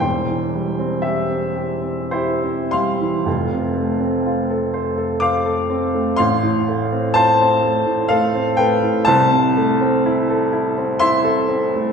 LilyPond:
\new Staff \with { instrumentName = "Grand piano" } { \time 3/4 \key f \lydian \tempo 4 = 61 << { <c'' g''>4 <g' e''>4 <e' c''>8 <f'' c'''>8~ | <f'' c'''>2 <f'' d'''>4 | <f'' c'''>4 <c'' a''>4 <a' f''>8 <b' g''>8 | \key a \minor <c'' a''>2 <e'' c'''>4 | } \\ { <e,, e,>16 e16 g16 c'8 c'16 g'16 c'16 g'16 c'16 g16 e16 | <f,, f,>16 c16 a16 c'16 f'16 a'16 c''16 a'16 c''16 a'16 c'16 a16 | a,,16 a,16 a16 c'16 f'16 c'16 a16 a,16 a16 c'16 a16 a,16 | c,16 c16 a16 c'16 e'16 a'16 e'16 c'16 e'16 a'16 c'16 a16 | } >> }